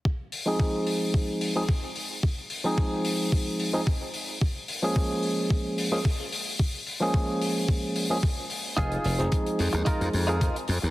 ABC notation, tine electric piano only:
X:1
M:4/4
L:1/16
Q:1/4=110
K:Fm
V:1 name="Tine electric piano"
z3 [F,A,CEA]8 [F,A,CEA] z4 | z3 [F,A,CEA]8 [F,A,CEA] z4 | z3 [F,A,B,DA]8 [F,A,B,DA] z4 | z3 [F,A,B,DA]8 [F,A,B,DA] z4 |
z3 [F,A,CEA]8 [F,A,CEA] z4 |]